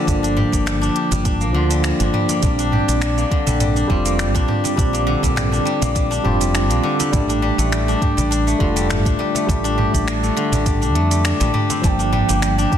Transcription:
Already playing: guzheng D3 A#3 D4 G4, tine electric piano F3 A#3 F4
0.04 fretless electric bass G1, tine electric piano F3 A#3, guzheng G3, kick, cajon bass, closed hi-hat, cabasa
0.09 tine electric piano D4
0.23 guzheng D4, cajon slap, closed hi-hat, cabasa
0.37 guzheng G3, mid tom
0.52 fretless electric bass G1, guzheng A#3, kick, closed hi-hat, cabasa
0.66 guzheng G3, finger snap, closed hi-hat, cabasa
0.81 guzheng D4, cabasa
0.95 guzheng G4, closed hi-hat
1.11 fretless electric bass G1, guzheng G3, cajon bass, cajon slap, closed hi-hat, cabasa
1.25 guzheng D4, kick, closed hi-hat, mid tom, cabasa
1.41 guzheng A#3, cabasa
1.53 fretless electric bass D2, guzheng D3, tine electric piano F3 A#3
1.57 tine electric piano F4
1.71 guzheng G3, cajon slap, closed hi-hat, cabasa
1.84 guzheng G3, finger snap, closed hi-hat, cabasa
2.00 fretless electric bass G1, guzheng D4, cajon slap, closed hi-hat, cabasa
2.13 guzheng G3, mid tom
2.29 guzheng A#3, cajon slap, closed hi-hat, cabasa
2.41 fretless electric bass A#1, tine electric piano G3 C4, kick, cajon bass, closed hi-hat, cabasa
2.45 tine electric piano D4
2.59 guzheng D4, closed hi-hat, cabasa
2.72 guzheng G4, mid tom
2.88 fretless electric bass A#1, guzheng G3, closed hi-hat, cabasa
3.02 guzheng D4, finger snap, closed hi-hat, cabasa
3.18 guzheng A#3, cabasa
3.31 guzheng D3, kick, closed hi-hat
3.47 fretless electric bass A#1, guzheng G3, cajon bass, cajon slap, closed hi-hat, cabasa
3.60 guzheng G3, closed hi-hat, mid tom, cabasa
3.76 guzheng D4, cabasa
3.87 fretless electric bass F1, tine electric piano G3 C4 F4, guzheng G3, kick
4.05 guzheng A#3, closed hi-hat, cabasa
4.19 guzheng G3, finger snap, closed hi-hat, cabasa
4.35 fretless electric bass A#1, guzheng D4, kick, closed hi-hat, cabasa
4.48 guzheng G4, cajon slap, mid tom
4.64 guzheng G3, cajon slap, closed hi-hat, cabasa
4.76 fretless electric bass A#1, tine electric piano G3 C4, guzheng D4, cajon bass, kick, closed hi-hat, cabasa
4.80 tine electric piano D4
4.93 guzheng A#3, closed hi-hat, cabasa
5.07 guzheng D3
5.23 fretless electric bass A#1, guzheng G3, kick, closed hi-hat, cabasa
5.36 guzheng G3, finger snap, closed hi-hat, mid tom, cabasa
5.52 guzheng D4, cabasa
5.65 guzheng G3, closed hi-hat
5.82 fretless electric bass A#1, guzheng A#3, cajon bass, cajon slap, closed hi-hat, cabasa
5.95 guzheng G3, kick, closed hi-hat, cabasa
6.11 guzheng D4, cabasa
6.23 fretless electric bass F1, tine electric piano G3 C4 F4, guzheng G4, mid tom
6.40 guzheng G3, cajon slap, closed hi-hat, cabasa
6.54 guzheng D4, finger snap, closed hi-hat, cabasa
6.70 fretless electric bass A#1, guzheng A#3, cajon slap, closed hi-hat, cabasa
6.83 guzheng D3
6.99 guzheng G3, cajon slap, closed hi-hat, cabasa
7.12 fretless electric bass A1, tine electric piano G3 A3 D4, guzheng G3, kick, cajon bass, closed hi-hat, mid tom, cabasa
7.29 guzheng D4, closed hi-hat, cabasa
7.42 guzheng G3
7.58 fretless electric bass A1, guzheng A3, closed hi-hat, cabasa
7.72 guzheng G3, finger snap, closed hi-hat, cabasa
7.88 guzheng D4, cabasa
8.02 guzheng G4, kick, closed hi-hat, mid tom
8.17 fretless electric bass A1, guzheng G3, cajon bass, cajon slap, closed hi-hat, cabasa
8.31 guzheng D4, closed hi-hat, cabasa
8.47 guzheng A3, cabasa
8.59 fretless electric bass F1, guzheng D3, tine electric piano G3 A3 F4, kick
8.76 guzheng G3, closed hi-hat, cabasa
8.89 guzheng G3, finger snap, closed hi-hat, mid tom, cabasa
9.05 fretless electric bass A1, guzheng D4, kick, closed hi-hat, cabasa
9.19 guzheng G3, cajon slap
9.35 guzheng A3, cajon slap, closed hi-hat, cabasa
9.46 fretless electric bass A1, tine electric piano G3 A3, kick, cajon bass, closed hi-hat, cabasa
9.51 tine electric piano D4
9.64 guzheng D4, cajon slap, closed hi-hat, cabasa
9.78 guzheng G4, mid tom
9.94 fretless electric bass A1, guzheng G3, kick, closed hi-hat, cabasa
10.07 guzheng D4, finger snap, closed hi-hat, cabasa
10.23 guzheng A3, cabasa
10.37 guzheng D3, closed hi-hat
10.52 fretless electric bass A1, guzheng G3, cajon bass, cajon slap, closed hi-hat, cabasa
10.66 guzheng G3, kick, closed hi-hat, mid tom, cabasa
10.82 guzheng D4, cabasa
10.95 fretless electric bass F2, guzheng A3, closed hi-hat
11.11 guzheng G3, cajon slap, closed hi-hat, cabasa
11.25 guzheng D4, finger snap, closed hi-hat, cabasa
11.40 fretless electric bass A1, guzheng G3, cajon slap, closed hi-hat, cabasa
11.54 guzheng G3, mid tom
11.70 guzheng C4, cajon slap, closed hi-hat, cabasa
11.81 fretless electric bass G1, tine electric piano F3 A#3 D4, guzheng G3, bansuri A5, kick, closed hi-hat, cabasa
11.87 bansuri G5
11.99 guzheng D4, cabasa
12.12 guzheng G3, mid tom
12.28 fretless electric bass G1, guzheng A#3, closed hi-hat, cabasa
12.42 guzheng G3, finger snap, closed hi-hat, cabasa
12.58 guzheng D4, cabasa
12.72 guzheng G4, kick, closed hi-hat

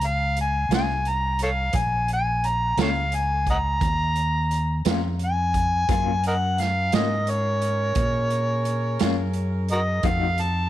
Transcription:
Already playing: fingered electric bass C#2
0.01 closed hi-hat
0.06 harmonica F5
0.36 closed hi-hat
0.41 harmonica G#5
0.69 fingered electric bass C2, clean electric guitar G#3 C#4 F4, snare, closed hi-hat
0.73 clean electric guitar A#2, harmonica G#5
1.05 harmonica A#5, closed hi-hat
1.39 closed hi-hat
1.43 harmonica A4 C#5 F5
1.73 fingered electric bass A#1, harmonica G#5, kick, closed hi-hat
2.08 closed hi-hat
2.13 harmonica G#5
2.44 harmonica A#5, closed hi-hat
2.77 fingered electric bass C#2, clean electric guitar A#2 G#3 C#4 F4, snare, closed hi-hat
2.81 harmonica A4 C#5 F5
3.12 harmonica G#5, closed hi-hat
3.47 harmonica D#5 F#5 A#5, kick, closed hi-hat
3.81 fingered electric bass D#2, kick, closed hi-hat
4.15 closed hi-hat
4.51 closed hi-hat
4.85 fingered electric bass F2, clean electric guitar A#2 G#3 C#4 F4, snare, closed hi-hat
5.19 closed hi-hat
5.24 harmonica G#5
5.54 kick, closed hi-hat
5.88 fingered electric bass F#2, clean electric guitar F#3 A#3 C#4 F4, horn section C#4 F#4 A#4, kick, closed hi-hat
6.23 harmonica A#4 D#5 F#5, closed hi-hat
6.58 harmonica F5, snare, closed hi-hat
6.92 fingered electric bass G#2, clean electric guitar F#3 A#3 C#4 F4, harmonica D#5, snare, closed hi-hat
7.27 harmonica C#5, closed hi-hat
7.61 closed hi-hat
7.95 fingered electric bass A#2, horn section G#4, kick, closed hi-hat
8.30 closed hi-hat
8.65 closed hi-hat
8.99 fingered electric bass F#2, clean electric guitar F#3 A#3 C#4 F4, snare, closed hi-hat
9.33 closed hi-hat
9.68 harmonica F#4 A#4 D#5, closed hi-hat
10.03 fingered electric bass F2, clean electric guitar F3 A3 D#4 F#4, horn section D#4 F#4 A4, kick, closed hi-hat
10.07 harmonica F5
10.38 harmonica A5, closed hi-hat

